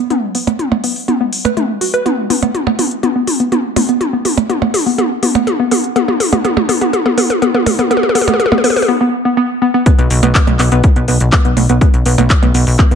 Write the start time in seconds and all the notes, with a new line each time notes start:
0.10 B3, closed hi-hat, mid tom
0.35 B3, open hi-hat
0.47 B3, closed hi-hat, percussion blips
0.59 closed hi-hat, mid tom
0.72 B3, percussion blips
0.84 B3, open hi-hat
0.96 open hi-hat
1.08 B3, closed hi-hat, mid tom
1.21 B3
1.33 open hi-hat
1.45 B4, closed hi-hat, percussion blips
1.57 A3, closed hi-hat, mid tom
1.81 F#4, open hi-hat
1.94 B4, closed hi-hat
2.06 B3, closed hi-hat, mid tom
2.30 B3, open hi-hat, mid tom
2.43 B3, closed hi-hat, percussion blips
2.55 closed hi-hat, mid tom
2.67 B3, percussion blips
2.79 B3, open hi-hat, mid tom
2.91 closed hi-hat
3.03 B3, closed hi-hat, mid tom
3.16 B3
3.27 open hi-hat, mid tom
3.40 B3, closed hi-hat
3.52 B3, closed hi-hat, mid tom
3.76 B3, open hi-hat, mid tom, percussion blips
3.89 B3, closed hi-hat
4.01 closed hi-hat, mid tom
4.13 B3
4.25 B3, open hi-hat, mid tom
4.38 closed hi-hat, percussion blips
4.49 B3, closed hi-hat, mid tom
4.62 B3, percussion blips
4.74 open hi-hat, mid tom
4.86 B3, open hi-hat
4.98 B3, closed hi-hat, mid tom
5.23 B3, open hi-hat, mid tom
5.35 B3, closed hi-hat, percussion blips
5.47 closed hi-hat, mid tom
5.60 B3
5.71 B3, open hi-hat, mid tom
5.84 closed hi-hat
5.96 B3, closed hi-hat, mid tom
6.08 B3, mid tom
6.20 open hi-hat, mid tom
6.33 B3, closed hi-hat, mid tom, percussion blips
6.45 B3, closed hi-hat, mid tom
6.57 mid tom, percussion blips
6.69 B3, open hi-hat, mid tom
6.81 B3, closed hi-hat, mid tom
6.93 closed hi-hat, mid tom
7.06 B3, mid tom
7.18 B3, open hi-hat, mid tom
7.30 closed hi-hat, mid tom
7.42 B3, closed hi-hat, mid tom
7.54 B3, mid tom
7.66 open hi-hat, mid tom, percussion blips
7.79 B3, closed hi-hat, mid tom
7.91 B3, closed hi-hat, mid tom
7.97 mid tom
8.03 mid tom
8.09 mid tom
8.15 B3, open hi-hat, mid tom
8.21 mid tom
8.28 B3, closed hi-hat, mid tom, percussion blips
8.34 mid tom
8.40 closed hi-hat, mid tom
8.46 mid tom
8.52 B3, mid tom, percussion blips
8.58 mid tom
8.64 B3, open hi-hat, mid tom
8.70 mid tom
8.76 open hi-hat, mid tom
8.82 mid tom
8.88 B3
9.01 B3
9.25 B3
9.37 B3
9.62 B3
9.74 B3
9.86 B3 B4, kick, closed hi-hat
9.99 B1 B3 B4, closed hi-hat
10.10 B1, open hi-hat
10.23 B1 B3 B4, closed hi-hat, percussion blips
10.35 B3 B4, kick, clap, closed hi-hat
10.47 B1, closed hi-hat, percussion blips
10.59 B1 B3 B4, clap, open hi-hat
10.72 B1 B3 B4, closed hi-hat
10.84 kick, closed hi-hat
10.96 B1 B3 B4, closed hi-hat
11.08 B1 B3 B4, open hi-hat
11.20 B1, closed hi-hat
11.32 B3 B4, kick, clap, closed hi-hat
11.45 B1 B3 B4, closed hi-hat
11.57 B1, open hi-hat, percussion blips
11.69 B1 B3 B4, closed hi-hat
11.81 B3 B4, kick, closed hi-hat
11.94 B1, closed hi-hat
12.06 B1 B3 B4, open hi-hat
12.18 B1 B3 B4, closed hi-hat, percussion blips
12.30 kick, clap, closed hi-hat
12.42 B1 B3 B4, closed hi-hat, percussion blips
12.54 B1 B3 B4, open hi-hat
12.67 B1, open hi-hat
12.79 B3 B4, kick, clap
12.91 B1 B3 B4, closed hi-hat